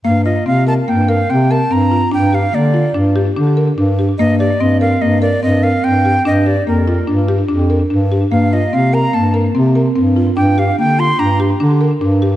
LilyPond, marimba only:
\new Staff \with { instrumentName = "Marimba" } { \time 5/4 \key f \mixolydian \tempo 4 = 146 bes8 f'8 c'8 bes'8 bes8 bes'8 c'8 bes'8 c'8 f'8 | d'8 g'8 bes8 f'8 d'8 g'8 d'8 bes'8 d'8 g'8 | bes8 g'8 c'8 bes'8 bes8 bes'8 c'8 bes'8 c'8 g'8 | d'8 g'8 bes8 f'8 d'8 g'8 d'8 bes'8 d'8 g'8 |
bes8 f'8 c'8 bes'8 bes8 bes'8 c'8 bes'8 c'8 f'8 | d'8 g'8 bes8 f'8 d'8 g'8 d'8 bes'8 d'8 g'8 | }